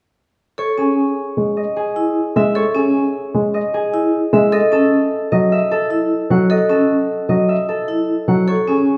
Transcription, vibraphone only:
0.58 0.84 A4 medium
0.78 1.03 C#4 soft
1.96 2.22 E4 medium
2.55 2.81 A4 medium
2.75 3.01 C#4 medium
3.94 4.19 E4 medium
4.52 4.78 A4 medium
4.72 4.98 C#4 medium
5.90 6.16 E4 medium
6.50 6.76 A4 medium
6.70 6.95 C#4 medium
7.88 8.14 E4 medium
8.48 8.73 A4 medium
8.67 8.93 C#4 medium

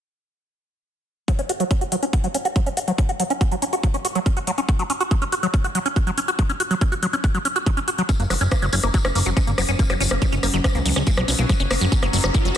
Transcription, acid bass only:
1.28 1.32 F#3 loud
1.39 1.41 C#4 loud
1.49 1.52 F#4 loud
1.60 1.64 F#3 loud
1.71 1.73 C#4 loud
1.81 1.84 F#4 loud
1.92 1.96 F#3 loud
2.03 2.05 C#4 loud
2.13 2.16 F#4 loud
2.24 2.28 F#3 loud
2.35 2.37 C#4 loud
2.45 2.48 F#4 loud
2.56 2.60 F#3 loud
2.66 2.69 C#4 loud
2.77 2.79 F#4 loud
2.88 2.92 F#3 loud
2.98 3.01 C#4 loud
3.09 3.11 F#4 loud
3.20 3.24 F#3 medium
3.30 3.33 C#4 loud
3.41 3.43 F#4 loud
3.52 3.56 F#3 loud
3.62 3.65 C#4 loud
3.73 3.75 F#4 loud
3.83 3.88 F#3 loud
3.94 3.97 C#4 loud
4.05 4.07 F#4 loud
4.15 4.19 F#3 loud
4.26 4.28 C#4 loud
4.37 4.39 F#4 loud
4.47 4.51 F#3 loud
4.58 4.60 C#4 loud
4.69 4.71 F#4 loud
4.79 4.83 F#3 loud
4.90 4.92 C#4 loud
5.00 5.03 F#4 loud
5.11 5.15 F#3 loud
5.22 5.24 C#4 loud
5.32 5.35 F#4 loud
5.43 5.47 F#3 loud
5.54 5.56 C#4 loud
5.64 5.67 F#4 loud
5.75 5.79 F#3 loud
5.86 5.88 C#4 loud
5.96 5.99 F#4 loud
6.07 6.11 F#3 loud
6.17 6.20 C#4 loud
6.28 6.31 F#4 loud
6.39 6.43 F#3 loud
6.49 6.52 C#4 loud
6.60 6.62 F#4 loud
6.71 6.75 F#3 loud
6.81 6.84 C#4 loud
6.92 6.94 F#4 loud
7.03 7.07 F#3 loud
7.13 7.16 C#4 loud
7.24 7.26 F#4 loud
7.35 7.39 F#3 loud
7.45 7.48 C#4 loud
7.56 7.58 F#4 loud
7.66 7.70 F#3 loud
7.77 7.80 C#4 loud
7.88 7.90 F#4 loud
7.98 8.02 F#3 loud
8.09 8.11 C#4 loud
8.20 8.24 A#3 medium
8.30 8.34 F#3 loud
8.41 8.43 C#4 loud
8.52 8.56 A#3 medium
8.62 8.66 F#3 loud
8.73 8.75 C#4 loud
8.83 8.87 A#3 medium
8.94 8.98 F#3 loud
9.05 9.07 C#4 loud
9.15 9.19 A#3 medium
9.26 9.30 F#3 loud
9.37 9.39 C#4 loud
9.47 9.51 A#3 medium
9.58 9.62 F#3 loud
9.69 9.71 C#4 loud
9.79 9.83 A#3 medium
9.90 9.94 F#3 loud
10.00 10.03 C#4 loud
10.11 10.15 A#3 medium
10.22 10.26 F#3 loud
10.32 10.35 C#4 loud
10.43 10.47 A#3 medium
10.54 10.58 F#3 loud
10.64 10.67 C#4 loud
10.75 10.79 A#3 medium
10.86 10.90 F#3 loud
10.96 10.99 C#4 loud
11.07 11.11 A#3 medium
11.17 11.22 F#3 loud
11.28 11.31 C#4 loud
11.39 11.43 A#3 medium
11.49 11.53 F#3 loud
11.60 11.62 C#4 loud
11.71 11.75 A#3 medium
11.81 11.85 F#3 loud
11.92 11.94 C#4 loud
12.03 12.07 A#3 medium
12.13 12.17 F#3 loud
12.24 12.26 C#4 loud
12.34 12.39 A#3 medium
12.45 12.49 F#3 loud

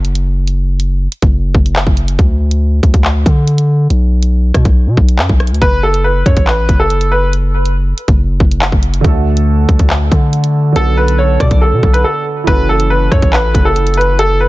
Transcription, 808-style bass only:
0.00 1.08 F#1 loud
1.22 1.53 F#1 loud
1.55 1.85 F#1 loud
1.87 2.17 F#1 loud
2.19 2.81 D2 loud
2.83 2.93 D2 loud
2.94 3.25 D2 loud
3.26 3.88 D3 loud
3.90 4.52 B1 loud
4.54 4.65 B2 loud
4.65 4.88 B1 loud
4.87 4.97 B2 loud
4.97 5.20 B1 loud
5.19 5.29 F#2 loud
5.29 5.52 B1 loud
5.51 5.61 D2 loud
5.62 6.23 F#1 loud
6.26 6.36 F#2 loud
6.37 6.68 A1 loud
6.69 7.93 F#1 loud
8.08 8.39 F#1 loud
8.40 8.71 F#1 loud
8.72 9.03 F#1 loud
9.04 9.66 D2 loud
9.69 9.79 D2 loud
9.79 10.10 D2 loud
10.12 10.73 D3 loud
10.76 11.38 B1 loud
11.40 11.50 B2 loud
11.51 11.74 B1 loud
11.72 11.83 B2 loud
11.83 12.04 B1 loud
12.47 13.09 F#1 loud
13.12 13.22 F#2 loud
13.22 13.53 A1 loud
13.55 14.48 F#1 loud

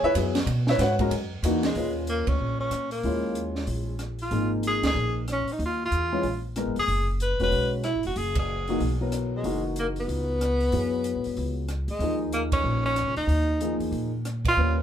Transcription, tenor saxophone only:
1.66 1.94 G#3 medium
2.09 2.30 A#3 medium
2.28 2.60 C#4 medium
2.60 2.90 C#4 medium
2.92 3.51 A#3 medium
4.22 4.51 F4 medium
4.67 4.84 G#4 loud
4.87 5.15 G#4 medium
5.32 5.54 C#4 medium
5.52 5.62 D#4 medium
5.65 5.81 F4 medium
5.85 6.42 F4 medium
6.79 7.07 G#4 medium
7.22 7.40 B4 medium
7.43 7.71 B4 medium
7.84 8.02 E4 medium
8.06 8.19 F#4 medium
8.17 8.36 G#4 medium
8.39 8.97 G#4 medium
9.36 9.64 G#3 medium
9.79 9.88 A#3 medium
10.00 11.66 B3 medium
11.89 12.19 G#3 medium
12.33 12.42 A#3 medium
12.53 12.82 C#4 medium
12.85 13.15 C#4 medium
13.17 13.77 D#4 medium
14.48 14.76 F4 medium

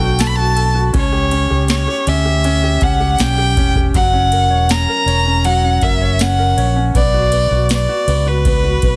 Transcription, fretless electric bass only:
0.00 0.90 B1 loud
0.94 1.47 C#2 loud
1.51 1.86 C#2 medium
2.07 2.78 D2 medium
2.82 3.17 C#2 loud
3.19 3.54 B1 loud
3.57 3.92 E1 medium
3.94 4.50 F#1 loud
4.50 4.85 E1 medium
5.06 5.77 E1 medium
5.82 6.53 F#1 loud
6.57 6.92 A#1 loud
6.95 7.47 B1 loud
7.51 7.86 B1 medium
8.07 8.78 C#2 medium
8.83 8.96 B1 medium

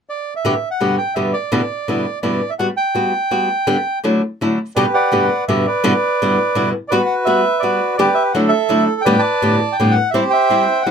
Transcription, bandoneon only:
0.10 0.34 D5 medium
0.36 0.69 E5 medium
0.71 0.96 F#5 medium
0.98 1.15 G5 medium
1.15 1.32 E5 medium
1.33 2.19 D5 medium
2.22 2.50 D5 medium
2.50 2.54 E5 medium
2.59 2.67 F#5 medium
2.77 3.99 G5 medium
4.76 5.26 G4 soft
4.76 4.93 B4 soft
4.76 4.84 D5 medium
4.94 5.44 B4 soft
4.94 5.45 D5 soft
4.94 5.44 F#5 medium
5.48 5.66 E5 medium
5.66 6.70 B4 soft
5.66 6.69 D5 medium
6.88 7.41 F#4 medium
6.88 7.26 B4 soft
6.88 6.97 D5 medium
7.06 7.14 F#5 medium
7.25 7.61 B4 medium
7.25 7.63 E5 medium
7.59 7.96 F#4 soft
7.59 7.96 B4 soft
7.59 7.94 D5 medium
7.97 8.33 G4 medium
7.97 8.32 B4 medium
7.97 8.14 D5 medium
8.14 8.23 E5 medium
8.32 8.51 A4 soft
8.32 8.41 F#5 medium
8.49 9.02 A4 medium
8.49 8.84 E5 medium
9.01 9.56 B4 medium
9.01 9.21 D5 medium
9.01 9.20 G5 medium
9.19 9.73 D5 medium
9.19 9.77 A5 medium
9.72 9.94 G5 medium
9.91 10.10 F#5 medium
10.11 10.64 G4 medium
10.11 10.19 E5 medium
10.15 10.32 C5 medium
10.30 10.83 C5 medium
10.30 10.82 E5 medium
10.30 10.86 G5 medium
10.82 10.91 F#5 medium

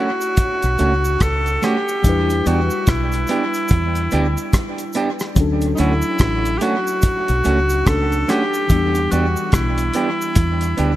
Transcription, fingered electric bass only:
0.64 0.77 B1 medium
0.81 1.16 C#2 medium
1.21 1.57 C#2 medium
2.05 2.41 E2 medium
2.47 2.68 E2 medium
2.88 3.24 B1 medium
3.72 4.08 E2 loud
4.14 4.35 D2 medium
5.37 5.73 D2 loud
5.80 6.01 D2 loud
6.20 6.57 A1 medium
7.30 7.43 B1 medium
7.46 7.82 C#2 medium
7.87 8.23 C#2 medium
8.70 9.07 E2 loud
9.13 9.34 E2 medium
9.54 9.90 B1 medium
10.37 10.73 E2 medium
10.79 10.96 D2 medium

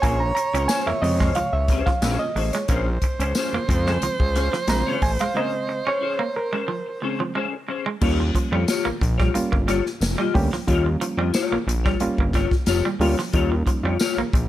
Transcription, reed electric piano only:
0.02 0.21 G#5 loud
0.20 0.34 A#5 loud
0.35 0.67 A#5 loud
0.68 0.87 G#5 loud
0.87 1.03 E5 medium
1.02 1.48 C3 medium
1.02 1.48 C#3 medium
1.02 1.48 G#3 medium
1.02 1.37 D#5 loud
1.35 1.52 F5 loud
1.53 1.84 E5 medium
1.86 2.18 F5 medium
2.19 2.54 D#5 medium
2.53 2.84 C#5 medium
3.68 4.14 C#3 medium
3.68 4.14 G#3 medium
3.68 4.14 C4 medium
4.68 4.98 C#3 medium
4.68 4.99 G#3 soft
4.68 4.99 C4 medium
4.68 4.84 A#5 loud
5.03 5.10 G#5 loud
5.20 5.36 F5 medium
5.34 5.80 C#3 medium
5.34 5.80 G#3 soft
5.34 5.81 C4 medium
5.34 5.89 D#5 loud
5.88 6.38 C#5 loud
6.36 6.98 A#4 medium
7.01 7.32 C#3 soft
7.01 7.32 G#3 soft
7.01 7.32 C4 soft
8.01 8.59 G3 medium
8.01 8.59 A#3 medium
8.01 8.59 C#4 medium
8.01 8.59 F4 medium
9.35 9.78 G3 medium
9.35 9.78 A#3 medium
9.35 9.78 C#4 medium
9.35 9.78 F4 loud
10.34 10.50 G3 loud
10.34 10.50 A#3 medium
10.34 10.50 C#4 loud
10.34 10.50 G4 loud
10.67 11.25 G3 medium
10.67 11.25 A#3 medium
10.67 11.25 C#4 medium
10.67 11.25 F4 medium
12.01 12.44 G3 medium
12.01 12.44 A#3 medium
12.01 12.44 C#4 medium
12.01 12.44 F4 loud
13.01 13.16 G3 loud
13.01 13.16 A#3 loud
13.01 13.16 C#4 medium
13.01 13.16 F4 loud
13.34 13.91 G3 medium
13.34 13.91 A#3 medium
13.34 13.91 C#4 medium
13.34 13.91 D#4 medium

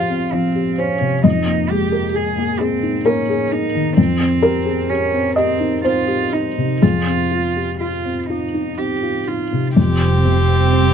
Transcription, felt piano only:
0.00 1.20 F2 soft
0.00 0.33 F3 soft
0.00 0.55 G4 soft
0.00 1.27 G#4 soft
0.00 0.78 C5 soft
0.00 1.20 F5 medium
0.10 0.47 C4 soft
0.33 0.70 F3 soft
0.55 0.92 G4 soft
0.78 1.15 C5 soft
1.00 1.24 C3 soft
1.24 3.93 F2 soft
1.24 3.01 D#5 medium
1.47 1.83 A#3 soft
1.69 2.06 G#3 soft
1.92 2.15 A#4 soft
2.14 2.51 G#4 soft
2.38 2.74 A#3 soft
2.61 2.97 G#4 soft
2.83 3.19 D#4 soft
3.06 3.43 A#3 soft
3.06 3.93 A#4 medium
3.29 3.66 G#4 soft
3.52 3.88 D#4 soft
3.75 3.98 D#3 soft
3.97 6.78 F2 soft
4.20 4.57 C4 soft
4.43 4.81 G4 soft
4.43 5.33 A#4 medium
4.66 4.89 G#4 soft
4.90 5.28 G4 soft
5.14 5.52 C4 soft
5.36 5.75 G4 soft
5.36 5.81 D#5 medium
5.60 5.99 D#4 soft
5.84 6.23 C4 soft
5.84 6.78 C5 medium
6.07 6.47 G4 soft
6.33 6.72 D#4 soft
6.57 6.82 C3 soft
6.81 9.73 F2 soft
6.81 8.74 G#4 soft
7.07 7.46 C4 soft
7.31 7.71 F4 soft
7.56 7.81 G4 soft
7.81 8.20 F4 soft
8.05 8.44 C4 soft
8.30 8.69 F4 soft
8.54 8.93 D#4 soft
8.79 9.18 C4 soft
9.03 9.42 F4 soft
9.27 9.67 D#4 soft
9.53 9.77 C3 soft
9.76 10.94 F2 soft
10.25 10.94 C3 soft
10.73 10.94 C4 soft

